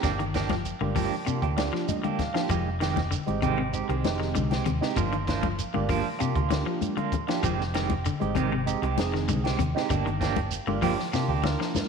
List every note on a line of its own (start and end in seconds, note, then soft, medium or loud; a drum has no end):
0.03 0.70 G1 medium
0.03 0.15 D3 medium
0.03 0.22 F3 medium
0.03 0.22 A#3 medium
0.03 0.23 D4 medium
0.03 0.23 G4 medium
0.03 kick medium
0.03 snare soft
0.03 closed hi-hat medium
0.03 shekere medium
0.19 0.42 D#3 medium
0.19 closed hi-hat soft
0.34 0.53 F3 medium
0.34 0.53 A#3 medium
0.34 0.54 D4 medium
0.34 0.54 G4 medium
0.34 kick medium
0.34 snare medium
0.34 closed hi-hat soft
0.34 shekere soft
0.49 0.73 F3 medium
0.49 kick medium
0.49 snare soft
0.49 closed hi-hat soft
0.49 high conga medium
0.65 closed hi-hat medium
0.65 high conga soft
0.65 shekere medium
0.81 1.07 G1 medium
0.81 0.92 D3 medium
0.81 1.07 A#3 medium
0.81 1.07 D4 medium
0.81 1.08 F4 medium
0.81 1.08 G4 medium
0.81 high conga medium
0.95 1.14 F3 medium
0.95 1.19 F3 medium
0.95 1.14 A#3 medium
0.95 1.15 D4 medium
0.95 1.15 G4 medium
0.95 kick medium
0.95 open hi-hat medium
0.95 high conga medium
0.95 low conga medium
0.95 shekere soft
1.26 1.49 C3 medium
1.26 1.44 A#3 medium
1.26 1.44 D4 medium
1.26 1.44 F4 medium
1.26 1.45 G4 medium
1.26 closed hi-hat medium
1.26 high conga soft
1.26 shekere medium
1.42 1.69 D2 medium
1.42 1.61 A#3 soft
1.42 1.61 D4 medium
1.42 1.61 G4 medium
1.42 kick medium
1.42 closed hi-hat soft
1.56 1.70 D3 medium
1.56 2.01 A#3 medium
1.56 2.01 D4 medium
1.56 2.02 F4 medium
1.56 2.02 G4 medium
1.56 1.86 D5 medium
1.56 snare medium
1.56 closed hi-hat soft
1.56 high conga medium
1.56 shekere soft
1.73 1.96 F3 medium
1.73 snare soft
1.88 2.03 D#5 medium
1.88 closed hi-hat medium
1.88 high conga medium
1.88 low conga medium
1.88 shekere medium
2.03 2.27 D3 medium
2.03 2.23 A#3 soft
2.03 2.22 D4 soft
2.03 2.22 G4 medium
2.03 2.18 F5 medium
2.03 closed hi-hat soft
2.03 high conga medium
2.19 2.48 F5 medium
2.19 kick medium
2.19 snare soft
2.19 closed hi-hat soft
2.19 low conga medium
2.19 shekere soft
2.33 2.46 F3 medium
2.33 2.49 A#3 medium
2.33 2.49 D4 medium
2.33 2.50 F4 medium
2.33 2.50 G4 medium
2.33 snare medium
2.33 closed hi-hat soft
2.49 3.17 F1 medium
2.49 2.68 D#3 medium
2.49 2.73 F3 medium
2.49 2.69 G#3 medium
2.49 2.69 G4 medium
2.49 muted clean electric guitar stroke medium
2.49 kick medium
2.49 closed hi-hat medium
2.49 shekere medium
2.80 3.03 D#3 medium
2.80 2.99 D#3 medium
2.80 3.00 G#3 medium
2.80 3.00 C4 medium
2.80 3.00 G4 medium
2.80 snare medium
2.80 closed hi-hat soft
2.80 shekere soft
2.96 kick medium
2.96 snare soft
2.96 closed hi-hat soft
2.96 high conga medium
3.11 3.34 D3 medium
3.11 closed hi-hat medium
3.11 high conga soft
3.11 shekere medium
3.26 3.81 G#1 medium
3.26 3.53 G#3 medium
3.26 3.53 C4 medium
3.26 3.54 D#4 medium
3.26 3.54 G4 medium
3.26 closed hi-hat soft
3.26 high conga medium
3.42 3.54 C3 medium
3.42 3.61 D#3 medium
3.42 3.61 G#3 medium
3.42 3.61 C4 medium
3.42 3.62 G4 medium
3.42 kick medium
3.42 closed hi-hat soft
3.42 low conga medium
3.42 shekere soft
3.58 3.81 C3 medium
3.73 3.91 G#3 medium
3.73 3.91 C4 medium
3.73 3.91 D#4 medium
3.73 3.92 G4 medium
3.73 closed hi-hat medium
3.73 high conga soft
3.73 shekere medium
3.89 4.02 C2 medium
3.89 4.12 D#3 medium
3.89 4.08 G#3 soft
3.89 4.07 C4 soft
3.89 4.07 G4 soft
3.89 closed hi-hat soft
4.03 4.36 F1 medium
4.03 4.48 G#3 medium
4.03 4.48 C4 medium
4.03 4.49 D#4 medium
4.03 4.49 G4 medium
4.03 snare medium
4.03 closed hi-hat medium
4.03 high conga medium
4.03 shekere soft
4.20 4.31 D#3 medium
4.20 snare soft
4.35 4.61 C2 medium
4.35 4.58 D3 medium
4.35 closed hi-hat medium
4.35 high conga medium
4.35 low conga medium
4.35 shekere medium
4.50 4.69 G#3 soft
4.50 4.69 C4 soft
4.50 4.69 G4 medium
4.50 snare medium
4.50 closed hi-hat soft
4.50 high conga medium
4.65 4.79 D#2 medium
4.65 4.89 C3 medium
4.65 kick medium
4.65 closed hi-hat medium
4.65 low conga medium
4.65 shekere soft
4.81 4.96 G#3 medium
4.81 4.96 C4 medium
4.81 4.97 D#4 medium
4.81 4.97 G4 medium
4.81 muted fingered electric bass stroke soft
4.81 snare medium
4.96 5.63 G1 medium
4.96 5.15 F3 medium
4.96 5.08 F3 medium
4.96 5.15 A#3 medium
4.96 5.15 D4 medium
4.96 5.15 F4 medium
4.96 kick medium
4.96 closed hi-hat medium
4.96 shekere medium
5.12 5.35 D#3 medium
5.12 closed hi-hat soft
5.27 5.46 F3 medium
5.27 5.46 A#3 medium
5.27 5.47 D4 medium
5.27 5.47 F4 medium
5.27 kick medium
5.27 snare medium
5.27 closed hi-hat soft
5.27 shekere soft
5.43 5.66 F3 medium
5.43 kick medium
5.43 closed hi-hat soft
5.43 high conga loud
5.58 closed hi-hat medium
5.58 high conga soft
5.58 shekere medium
5.74 6.01 G1 medium
5.74 5.85 D3 medium
5.74 6.00 A#3 medium
5.74 6.00 D4 medium
5.74 6.00 F4 medium
5.74 6.01 G4 medium
5.74 high conga medium
5.89 6.08 F3 medium
5.89 6.12 F3 medium
5.89 6.08 A#3 medium
5.89 6.08 D4 medium
5.89 6.08 F4 medium
5.89 kick medium
5.89 open hi-hat medium
5.89 low conga medium
5.89 shekere soft
6.19 6.43 C3 medium
6.19 6.37 A#3 medium
6.19 6.37 D4 medium
6.19 6.37 F4 medium
6.19 6.38 G4 medium
6.19 closed hi-hat medium
6.19 high conga soft
6.19 shekere medium
6.35 6.62 D2 medium
6.35 6.55 A#3 soft
6.35 6.54 D4 soft
6.35 6.54 F4 medium
6.35 kick medium
6.35 closed hi-hat soft
6.50 6.62 D3 medium
6.50 6.94 A#3 medium
6.50 6.95 D4 medium
6.50 6.95 F4 medium
6.50 6.95 G4 medium
6.50 snare medium
6.50 closed hi-hat medium
6.50 high conga loud
6.50 low conga medium
6.50 shekere soft
6.66 6.89 F3 medium
6.81 closed hi-hat medium
6.81 high conga medium
6.81 shekere medium
6.97 7.20 D3 medium
6.97 7.16 A#3 soft
6.97 7.15 D4 soft
6.97 7.15 F4 medium
6.97 closed hi-hat soft
6.97 high conga medium
7.12 kick medium
7.12 closed hi-hat soft
7.12 low conga medium
7.12 shekere soft
7.27 7.40 F3 medium
7.27 7.43 A#3 medium
7.27 7.43 D4 medium
7.27 7.43 F4 medium
7.27 7.44 G4 medium
7.27 snare medium
7.27 closed hi-hat soft
7.43 8.10 F1 loud
7.43 7.62 D#3 medium
7.43 7.66 F3 medium
7.43 7.62 G#3 medium
7.43 7.62 C4 medium
7.43 7.62 G4 medium
7.43 kick medium
7.43 closed hi-hat medium
7.43 high conga soft
7.43 shekere medium
7.61 snare soft
7.74 7.93 D#3 medium
7.74 7.98 D#3 medium
7.74 7.93 G#3 medium
7.74 7.93 C4 medium
7.74 7.93 G4 medium
7.74 snare medium
7.74 closed hi-hat soft
7.74 shekere soft
7.90 kick medium
7.90 closed hi-hat soft
7.90 high conga medium
8.05 8.28 D3 medium
8.05 closed hi-hat medium
8.05 high conga soft
8.05 shekere medium
8.20 8.74 G#1 medium
8.20 8.46 G#3 medium
8.20 8.47 C4 medium
8.20 8.47 D#4 medium
8.20 8.47 G4 medium
8.20 closed hi-hat soft
8.20 high conga medium
8.35 8.48 C3 medium
8.35 8.54 D#3 medium
8.35 8.55 G#3 medium
8.35 8.55 C4 medium
8.35 8.55 G4 medium
8.35 kick medium
8.35 closed hi-hat soft
8.35 high conga medium
8.35 low conga medium
8.35 shekere soft
8.52 8.75 C3 medium
8.66 8.84 G#3 medium
8.66 8.84 C4 medium
8.66 8.84 D#4 medium
8.66 8.85 G4 medium
8.66 closed hi-hat medium
8.66 high conga soft
8.66 shekere medium
8.82 8.95 C2 medium
8.82 9.01 G#3 soft
8.82 9.01 C4 medium
8.82 9.01 G4 medium
8.82 muted clean electric guitar stroke medium
8.82 closed hi-hat soft
8.97 9.30 F1 medium
8.97 9.41 G#3 medium
8.97 9.42 C4 medium
8.97 9.42 D#4 medium
8.97 9.42 G#4 medium
8.97 snare medium
8.97 closed hi-hat medium
8.97 high conga loud
8.97 shekere soft
9.14 9.25 D#3 medium
9.14 snare soft
9.28 9.55 C2 medium
9.28 9.51 D3 medium
9.28 closed hi-hat medium
9.28 high conga medium
9.28 low conga medium
9.28 shekere medium
9.44 9.63 G#3 soft
9.44 9.62 C4 medium
9.44 9.62 G4 soft
9.44 snare medium
9.44 closed hi-hat soft
9.59 9.73 D#2 medium
9.59 9.82 C3 medium
9.59 kick medium
9.59 closed hi-hat medium
9.59 low conga medium
9.59 shekere soft
9.74 9.90 G#3 medium
9.74 9.90 C4 medium
9.74 9.90 D#4 medium
9.74 9.90 G4 loud
9.74 muted fingered electric bass stroke soft
9.74 snare medium
9.90 10.57 G1 medium
9.90 10.02 D3 medium
9.90 10.09 A#3 medium
9.90 10.09 D4 medium
9.90 10.09 G4 medium
9.90 muted clean electric guitar stroke medium
9.90 kick medium
9.90 closed hi-hat medium
9.90 shekere medium
10.06 10.29 D#3 medium
10.06 closed hi-hat soft
10.20 10.39 F3 medium
10.20 10.39 A#3 medium
10.20 10.40 D4 medium
10.20 10.40 G4 medium
10.20 kick medium
10.20 snare medium
10.20 closed hi-hat soft
10.20 shekere soft
10.36 kick medium
10.36 closed hi-hat soft
10.36 high conga medium
10.51 closed hi-hat medium
10.51 high conga soft
10.51 shekere medium
10.67 10.94 G1 medium
10.67 10.78 D3 medium
10.67 10.93 A#3 medium
10.67 10.94 D4 medium
10.67 10.94 F4 medium
10.67 10.94 G4 medium
10.67 high conga medium
10.82 11.01 F3 medium
10.82 11.05 F3 medium
10.82 11.01 A#3 medium
10.82 11.01 D4 medium
10.82 11.01 G4 medium
10.82 kick medium
10.82 open hi-hat medium
10.82 low conga medium
10.82 shekere soft
10.99 snare soft
11.13 11.36 C3 medium
11.13 11.31 A#3 medium
11.13 11.31 D4 medium
11.13 11.31 F4 medium
11.13 11.31 G4 medium
11.13 snare soft
11.13 high conga soft
11.13 shekere medium
11.28 11.55 D2 medium
11.28 11.48 A#3 soft
11.28 11.47 D4 soft
11.28 11.47 G4 soft
11.43 11.55 D3 medium
11.43 11.88 A#3 medium
11.43 11.88 D4 medium
11.43 11.88 F4 medium
11.43 11.88 A#4 medium
11.43 snare medium
11.43 high conga loud
11.43 low conga medium
11.43 shekere soft
11.60 11.82 F3 medium
11.60 snare medium
11.75 snare medium
11.75 high conga medium
11.75 low conga medium
11.75 shekere medium